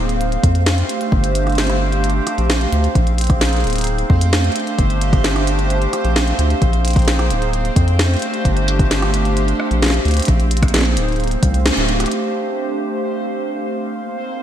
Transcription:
Already playing: D1 A#3 C4 D#4 G#4 C5 F5
0.09 closed hi-hat
0.21 A3, closed hi-hat
0.32 D4, closed hi-hat
0.42 F2 G4, kick, closed hi-hat
0.55 C5, closed hi-hat
0.66 snare, closed hi-hat
0.78 closed hi-hat
0.89 closed hi-hat
1.01 closed hi-hat
1.12 G1, kick
1.24 closed hi-hat
1.35 closed hi-hat
1.47 cross-stick, closed hi-hat
1.50 closed hi-hat
1.52 closed hi-hat
1.55 snare, closed hi-hat
1.58 closed hi-hat
1.61 closed hi-hat
1.64 closed hi-hat
1.67 cross-stick, closed hi-hat
1.70 closed hi-hat
1.92 closed hi-hat
2.04 closed hi-hat
2.10 closed hi-hat
2.27 cross-stick, closed hi-hat
2.38 A#1, closed hi-hat
2.50 snare, closed hi-hat
2.61 closed hi-hat
2.72 D2, closed hi-hat
2.84 closed hi-hat
2.95 A#1 A#3, kick, closed hi-hat
3.00 G#4
3.07 D#4, closed hi-hat
3.18 closed hi-hat
3.21 closed hi-hat
3.24 C5, closed hi-hat
3.27 kick, cross-stick, closed hi-hat
3.41 snare, closed hi-hat
3.45 closed hi-hat
3.49 closed hi-hat
3.53 closed hi-hat
3.56 closed hi-hat
3.60 D1, closed hi-hat
3.64 closed hi-hat
3.67 closed hi-hat
3.70 closed hi-hat
3.73 closed hi-hat
3.76 closed hi-hat
3.78 closed hi-hat
3.81 closed hi-hat
3.84 A3, closed hi-hat
3.87 closed hi-hat
3.98 closed hi-hat
4.04 D4 G4
4.10 F2, kick
4.21 closed hi-hat
4.28 C5
4.33 snare, closed hi-hat
4.44 closed hi-hat
4.52 closed hi-hat
4.56 closed hi-hat
4.60 closed hi-hat
4.67 closed hi-hat
4.78 G1, kick, closed hi-hat
4.90 closed hi-hat
5.01 closed hi-hat
5.13 kick, cross-stick, closed hi-hat
5.24 snare, closed hi-hat
5.36 cross-stick, closed hi-hat
5.47 closed hi-hat
5.59 closed hi-hat
5.70 closed hi-hat
5.82 closed hi-hat
5.93 cross-stick, closed hi-hat
6.04 A#1, closed hi-hat
6.16 snare, closed hi-hat
6.27 closed hi-hat
6.39 D2, closed hi-hat
6.50 closed hi-hat
6.62 A#1 A#3 D#4, kick, closed hi-hat
6.70 G#4 C5, closed hi-hat
6.85 closed hi-hat
6.88 closed hi-hat
6.90 closed hi-hat
6.93 kick, closed hi-hat
6.96 closed hi-hat
6.99 closed hi-hat
7.02 closed hi-hat
7.05 snare, closed hi-hat
7.08 closed hi-hat
7.19 cross-stick, closed hi-hat
7.30 D1, closed hi-hat
7.42 closed hi-hat
7.53 A3, closed hi-hat
7.62 C5, closed hi-hat
7.69 D4
7.76 F2, kick, closed hi-hat
7.86 G4, closed hi-hat
7.99 snare, closed hi-hat
8.11 closed hi-hat
8.14 closed hi-hat
8.16 closed hi-hat
8.19 closed hi-hat
8.22 closed hi-hat
8.34 closed hi-hat
8.45 G1, kick, closed hi-hat
8.57 closed hi-hat
8.68 closed hi-hat
8.79 kick, closed hi-hat
8.91 snare, closed hi-hat
9.02 cross-stick, closed hi-hat
9.14 closed hi-hat
9.25 closed hi-hat
9.37 closed hi-hat
9.48 closed hi-hat
9.60 cross-stick
9.71 A#1, closed hi-hat
9.82 snare, closed hi-hat
9.86 snare
9.90 snare, closed hi-hat
10.05 D2, closed hi-hat
10.08 closed hi-hat
10.11 closed hi-hat
10.14 closed hi-hat
10.17 closed hi-hat
10.20 closed hi-hat
10.22 closed hi-hat
10.25 A#1, kick, closed hi-hat
10.28 A#3, closed hi-hat
10.40 closed hi-hat
10.47 D#4
10.51 closed hi-hat
10.57 G#4, closed hi-hat
10.62 kick, cross-stick, closed hi-hat
10.68 C5 F5, closed hi-hat
10.74 snare, closed hi-hat
10.76 snare
10.79 snare
10.81 snare
10.83 snare, closed hi-hat
10.97 D1, closed hi-hat
11.08 closed hi-hat
11.12 closed hi-hat
11.16 closed hi-hat
11.20 A3, closed hi-hat
11.24 closed hi-hat
11.27 G4, closed hi-hat
11.31 D4, closed hi-hat
11.43 C2 C5, kick, closed hi-hat
11.54 closed hi-hat
11.66 snare, closed hi-hat
11.77 D1, closed hi-hat
11.89 closed hi-hat
12.00 cross-stick, closed hi-hat
12.04 cross-stick, closed hi-hat
12.08 C4 C5, cross-stick, closed hi-hat
13.95 A#3
14.04 D#4
14.16 C5
14.25 G#4

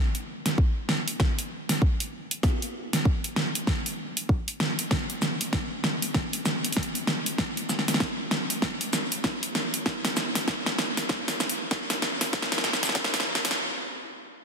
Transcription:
0.15 closed hi-hat
0.46 snare, closed hi-hat
0.58 kick
0.89 snare
1.08 closed hi-hat
1.20 kick, snare
1.39 closed hi-hat
1.69 snare, closed hi-hat
1.82 kick
2.00 closed hi-hat
2.31 closed hi-hat
2.43 kick, snare
2.62 closed hi-hat
2.93 snare, closed hi-hat
3.05 kick
3.24 closed hi-hat
3.36 snare
3.55 closed hi-hat
3.67 kick, snare
3.86 closed hi-hat
4.17 closed hi-hat
4.29 kick
4.48 closed hi-hat
4.60 snare
4.79 closed hi-hat
4.91 kick, snare
5.10 closed hi-hat
5.22 snare, shaker
5.41 closed hi-hat
5.53 kick, snare
5.84 snare
6.02 closed hi-hat
6.14 kick, snare
6.33 closed hi-hat
6.46 snare, shaker
6.64 closed hi-hat
6.72 closed hi-hat
6.77 kick, snare
6.83 closed hi-hat
6.95 closed hi-hat
7.07 snare
7.26 closed hi-hat
7.38 kick, snare
7.57 closed hi-hat
7.69 snare, shaker
7.79 snare
7.88 snare, closed hi-hat
7.94 snare
8.00 kick, snare
8.31 snare
8.50 closed hi-hat
8.62 kick, snare
8.81 closed hi-hat
8.93 snare, shaker
9.12 closed hi-hat
9.24 kick, snare
9.43 closed hi-hat
9.55 snare
9.74 closed hi-hat
9.86 kick, snare
10.05 snare, closed hi-hat
10.17 snare, shaker
10.35 snare, closed hi-hat
10.48 kick, snare
10.66 snare
10.78 snare
10.97 snare, closed hi-hat
11.09 kick, snare
11.28 snare, closed hi-hat
11.40 snare, shaker
11.49 closed hi-hat
11.71 kick, snare
11.90 snare, closed hi-hat
12.02 snare
12.21 snare, closed hi-hat
12.33 kick, snare
12.42 snare
12.52 snare, closed hi-hat
12.58 snare
12.64 snare, shaker
12.73 snare, shaker
12.83 snare, closed hi-hat, shaker
12.89 snare
12.95 kick, snare
13.04 snare
13.14 snare, closed hi-hat
13.20 snare
13.35 snare
13.45 snare, closed hi-hat
13.51 snare

